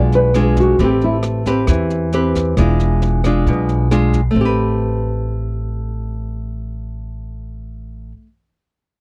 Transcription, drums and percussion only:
0.12 snare
0.34 cross-stick, snare
0.57 kick, snare
0.79 kick, snare
1.01 snare
1.23 cross-stick, snare
1.46 kick, snare
1.67 kick, cross-stick, snare
1.90 snare
2.12 snare
2.35 kick, snare
2.57 kick, cross-stick, snare
2.80 snare
3.02 snare
3.24 kick, cross-stick, snare
3.47 kick, snare
3.69 snare
3.91 cross-stick, snare
4.13 kick, snare

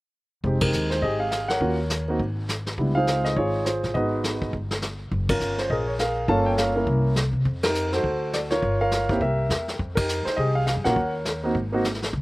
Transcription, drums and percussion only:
0.44 brush sweep, kick
0.61 kick, ride
0.73 hi-hat pedal
0.91 snare
1.02 brush sweep, kick
1.31 snare, hi-hat pedal
1.49 snare
1.61 brush sweep, kick
1.90 snare, hi-hat pedal
2.19 brush sweep, kick
2.49 snare, hi-hat pedal
2.66 snare
2.78 brush sweep, kick
3.07 snare, hi-hat pedal
3.25 snare
3.36 brush sweep, kick
3.66 snare, hi-hat pedal
3.83 snare
3.95 brush sweep, kick
4.24 snare, hi-hat pedal
4.42 kick
4.53 brush sweep, kick
4.71 snare
4.82 snare, hi-hat pedal
5.11 brush sweep, kick
5.29 kick, ride
5.40 hi-hat pedal
5.58 snare
5.70 brush sweep, kick
5.99 snare, hi-hat pedal
6.28 brush sweep, kick
6.58 snare, hi-hat pedal
6.87 brush sweep, kick
7.16 snare, hi-hat pedal
7.45 brush sweep, kick
7.63 snare, ride
7.75 hi-hat pedal
7.92 snare
8.04 brush sweep, kick
8.33 snare, hi-hat pedal
8.50 snare
8.62 brush sweep, kick
8.91 snare, hi-hat pedal
9.09 kick
9.21 brush sweep, kick
9.50 snare, hi-hat pedal
9.68 snare
9.79 brush sweep, kick
9.97 kick, ride
10.09 hi-hat pedal
10.26 snare
10.38 brush sweep, kick
10.67 snare, hi-hat pedal
10.85 snare
10.96 brush sweep, kick
11.25 snare, hi-hat pedal
11.55 brush sweep, kick
11.84 snare, hi-hat pedal
11.94 snare
12.02 snare
12.04 snare
12.13 brush sweep, kick

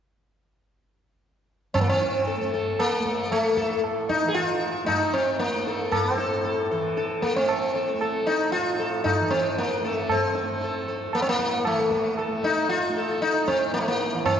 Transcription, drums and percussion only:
1.75 tabla na, tabla ge
2.02 tabla te
2.27 tabla te
2.53 tabla te
2.79 tabla na
3.06 tabla ke
3.31 tabla na
3.57 tabla ke
3.71 tabla te
3.84 tabla na
4.10 tabla ke
4.23 tabla te
4.36 tabla te
4.62 tabla te
4.88 tabla na, tabla ge
5.14 tabla te
5.40 tabla te
5.67 tabla te
5.92 tabla na, tabla ge
6.19 tabla te
6.45 tabla te
6.71 tabla te
6.98 tabla te
7.10 tabla te
7.23 tabla ke
7.36 tabla te
7.49 tabla na
7.75 tabla te
8.01 tabla na
8.27 tabla te
8.53 tabla te
8.80 tabla te
9.05 tabla na, tabla ge
9.32 tabla te
9.57 tabla te
9.83 tabla te
10.09 tabla na, tabla ge
10.35 tabla te
10.62 tabla te
10.87 tabla te
11.13 tabla na
11.39 tabla ke
11.65 tabla na
11.91 tabla ke
12.04 tabla te
12.18 tabla na
12.44 tabla ke
12.56 tabla te
12.69 tabla te
12.96 tabla te
13.21 tabla te
13.34 tabla te
13.48 tabla ke
13.60 tabla te
13.74 tabla te
14.00 tabla te
14.26 tabla na, tabla ge

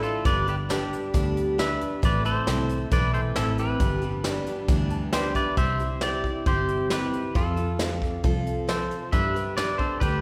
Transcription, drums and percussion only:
0.03 closed hi-hat
0.25 kick, closed hi-hat
0.47 closed hi-hat
0.70 snare, closed hi-hat
0.93 closed hi-hat
1.14 kick, closed hi-hat
1.37 closed hi-hat
1.59 snare, closed hi-hat
1.81 closed hi-hat
2.03 kick, closed hi-hat
2.25 closed hi-hat
2.47 snare, closed hi-hat
2.69 closed hi-hat
2.91 kick, closed hi-hat
3.14 closed hi-hat
3.36 snare, closed hi-hat
3.58 closed hi-hat
3.80 kick, closed hi-hat
4.01 closed hi-hat
4.24 snare, closed hi-hat
4.46 closed hi-hat
4.68 kick, closed hi-hat
4.90 closed hi-hat
5.13 snare, closed hi-hat
5.35 kick, closed hi-hat
5.57 kick, closed hi-hat
5.79 closed hi-hat
6.01 snare, closed hi-hat
6.24 kick
6.46 kick, closed hi-hat
6.68 closed hi-hat
6.90 snare, closed hi-hat
7.13 closed hi-hat
7.35 kick, closed hi-hat
7.57 closed hi-hat
7.79 snare, closed hi-hat
8.02 kick
8.23 kick, closed hi-hat
8.46 closed hi-hat
8.69 snare, closed hi-hat
8.91 closed hi-hat
9.13 kick, closed hi-hat
9.36 closed hi-hat
9.57 snare, closed hi-hat
9.79 kick
10.01 kick, closed hi-hat

